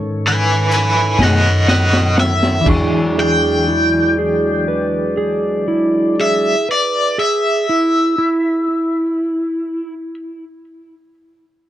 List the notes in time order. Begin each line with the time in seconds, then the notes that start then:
Already playing: G#2 D#3 C#4 A4 B4 C#5
0.27 B4 G#5
0.71 B4 G#5, closed hi-hat
1.18 F#2 B2 A3 D#4 G#4, snare
1.23 D#5 F#5
1.68 D#5 F#5, snare
1.93 snare
2.18 E5, snare
2.43 snare
2.61 E3 F#3 G#3 D4 D5
2.66 E2 D4 E4 G#4 C#6, kick, crash
2.74 G#4
3.19 G#4 G5
3.68 E4
4.19 G#4
4.68 B4
5.17 G#4
5.68 E4
6.20 G#4 E5
6.69 B4 D5
7.18 G#4 E5
7.69 E4
8.18 E4